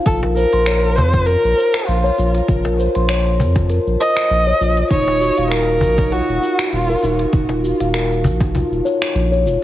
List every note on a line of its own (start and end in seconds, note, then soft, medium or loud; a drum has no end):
0.06 0.45 A#1 loud
0.06 0.20 A4 loud
0.06 kick loud
0.06 closed hi-hat soft
0.06 shaker soft
0.23 0.35 A#4 medium
0.23 cajon slap medium
0.23 shaker soft
0.36 0.97 A#4 loud
0.36 0.51 C5 medium
0.36 shaker medium
0.53 0.98 A#1 medium
0.53 0.66 C6 medium
0.53 closed hi-hat medium
0.53 shaker soft
0.66 1.12 C#5 medium
0.66 finger snap medium
0.66 closed hi-hat soft
0.66 shaker soft
0.84 shaker soft
0.96 1.36 F2 medium
0.96 1.27 C5 loud
0.96 cajon bass medium
0.96 shaker medium
1.13 1.27 F4 medium
1.13 kick loud
1.13 cajon slap medium
1.13 closed hi-hat medium
1.13 shaker soft
1.26 1.88 A#4 loud
1.26 1.43 A#4 medium
1.26 closed hi-hat soft
1.26 shaker soft
1.44 1.54 A#1 medium
1.44 shaker soft
1.57 2.03 C5 medium
1.57 shaker medium
1.74 finger snap medium
1.74 closed hi-hat medium
1.74 shaker soft
1.87 2.11 A#1 medium
1.87 2.34 F4 medium
1.87 closed hi-hat soft
1.87 shaker soft
2.04 2.17 C#5 loud
2.04 shaker soft
2.18 2.41 A#1 loud
2.18 2.34 F4 medium
2.18 cajon slap soft
2.18 shaker medium
2.35 closed hi-hat medium
2.35 shaker soft
2.48 2.88 A#1 loud
2.48 2.64 F4 loud
2.48 kick loud
2.48 closed hi-hat soft
2.48 shaker soft
2.65 2.77 A#4 medium
2.65 cajon slap medium
2.65 shaker soft
2.79 2.94 C5 medium
2.79 shaker medium
2.95 3.41 A#1 medium
2.95 3.08 C6 medium
2.95 closed hi-hat medium
2.95 shaker soft
3.09 3.54 C#5 medium
3.09 finger snap medium
3.09 closed hi-hat soft
3.09 shaker soft
3.26 shaker soft
3.40 3.79 F2 medium
3.40 cajon bass medium
3.40 shaker medium
3.56 3.69 F4 medium
3.56 kick loud
3.56 cajon slap medium
3.56 closed hi-hat medium
3.56 shaker soft
3.70 3.85 A#4 medium
3.70 closed hi-hat soft
3.70 shaker soft
3.87 3.96 A#1 medium
3.87 shaker soft
4.00 4.45 C5 medium
4.00 4.87 D#5 loud
4.00 shaker medium
4.17 finger snap medium
4.17 closed hi-hat medium
4.17 shaker soft
4.30 4.53 A#1 medium
4.30 closed hi-hat soft
4.30 shaker soft
4.47 4.59 C#5 loud
4.47 shaker soft
4.61 4.83 A#1 loud
4.61 4.77 F4 medium
4.61 shaker medium
4.77 cajon slap soft
4.77 closed hi-hat medium
4.77 shaker soft
4.91 5.30 D#1 loud
4.91 5.07 D#4 loud
4.91 5.48 C#5 loud
4.91 kick loud
4.91 closed hi-hat soft
4.91 shaker soft
5.07 5.20 F4 medium
5.07 cajon slap medium
5.07 shaker soft
5.21 5.36 F#4 medium
5.21 shaker medium
5.38 5.83 D#1 medium
5.38 5.51 F5 medium
5.38 closed hi-hat medium
5.38 shaker soft
5.51 6.13 A#4 loud
5.51 5.97 A#4 medium
5.51 finger snap medium
5.51 closed hi-hat soft
5.51 shaker soft
5.69 shaker soft
5.81 6.21 A#1 medium
5.81 cajon bass medium
5.81 shaker medium
5.98 6.11 D#4 medium
5.98 kick loud
5.98 cajon slap medium
5.98 closed hi-hat medium
5.98 shaker soft
6.12 6.28 F4 medium
6.12 6.72 F#4 loud
6.12 closed hi-hat soft
6.12 shaker soft
6.28 6.38 D#1 medium
6.28 shaker soft
6.42 6.87 F#4 medium
6.42 shaker medium
6.59 finger snap medium
6.59 closed hi-hat medium
6.59 shaker soft
6.73 6.95 D#1 medium
6.73 7.16 F4 medium
6.73 closed hi-hat soft
6.73 shaker soft
6.89 7.02 A#4 loud
6.89 shaker soft
7.02 7.26 D#1 loud
7.02 7.19 D#4 medium
7.02 cajon slap soft
7.02 shaker medium
7.19 closed hi-hat medium
7.19 shaker soft
7.33 7.73 D#1 loud
7.33 kick loud
7.33 closed hi-hat soft
7.33 shaker soft
7.49 7.63 F4 medium
7.49 cajon slap medium
7.49 shaker soft
7.64 7.79 F#4 medium
7.64 shaker medium
7.80 8.25 D#1 medium
7.80 7.93 F5 medium
7.80 closed hi-hat medium
7.80 shaker soft
7.94 8.39 A#4 medium
7.94 finger snap medium
7.94 closed hi-hat medium
7.94 shaker soft
8.12 shaker soft
8.24 8.63 A#1 medium
8.24 cajon bass medium
8.24 shaker medium
8.40 8.54 D#4 medium
8.40 kick loud
8.40 cajon slap medium
8.40 closed hi-hat medium
8.40 shaker soft
8.54 8.70 F4 medium
8.54 cajon bass medium
8.54 closed hi-hat soft
8.54 shaker soft
8.71 8.81 D#1 medium
8.71 shaker soft
8.85 9.01 C#5 loud
8.85 shaker medium
9.02 finger snap medium
9.02 closed hi-hat medium
9.02 shaker soft
9.15 9.47 A#1 loud
9.15 closed hi-hat soft
9.15 shaker soft
9.32 9.45 C#5 loud
9.32 shaker soft
9.45 9.57 D#1 loud
9.45 9.60 F4 medium
9.45 shaker medium